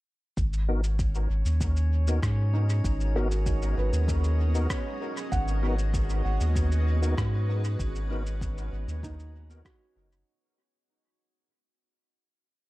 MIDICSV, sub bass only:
0, 0, Header, 1, 2, 480
1, 0, Start_track
1, 0, Key_signature, 5, "minor"
1, 0, Tempo, 618557
1, 290, Time_signature, 4, 2, 24, 8
1, 9853, End_track
2, 0, Start_track
2, 0, Title_t, "Sub bass"
2, 0, Program_c, 0, 38
2, 287, Note_on_c, 0, 32, 93
2, 986, Note_off_c, 0, 32, 0
2, 1005, Note_on_c, 0, 32, 91
2, 1114, Note_off_c, 0, 32, 0
2, 1126, Note_on_c, 0, 39, 84
2, 1705, Note_off_c, 0, 39, 0
2, 1726, Note_on_c, 0, 44, 84
2, 2186, Note_off_c, 0, 44, 0
2, 2206, Note_on_c, 0, 32, 96
2, 2906, Note_off_c, 0, 32, 0
2, 2927, Note_on_c, 0, 32, 91
2, 3035, Note_off_c, 0, 32, 0
2, 3047, Note_on_c, 0, 39, 86
2, 3625, Note_off_c, 0, 39, 0
2, 4127, Note_on_c, 0, 32, 93
2, 4826, Note_off_c, 0, 32, 0
2, 4849, Note_on_c, 0, 32, 92
2, 4956, Note_off_c, 0, 32, 0
2, 4970, Note_on_c, 0, 39, 88
2, 5547, Note_off_c, 0, 39, 0
2, 5568, Note_on_c, 0, 44, 89
2, 6026, Note_off_c, 0, 44, 0
2, 6047, Note_on_c, 0, 32, 95
2, 6746, Note_off_c, 0, 32, 0
2, 6768, Note_on_c, 0, 32, 93
2, 6876, Note_off_c, 0, 32, 0
2, 6888, Note_on_c, 0, 39, 89
2, 7466, Note_off_c, 0, 39, 0
2, 7728, Note_on_c, 0, 30, 83
2, 7941, Note_off_c, 0, 30, 0
2, 9853, End_track
0, 0, End_of_file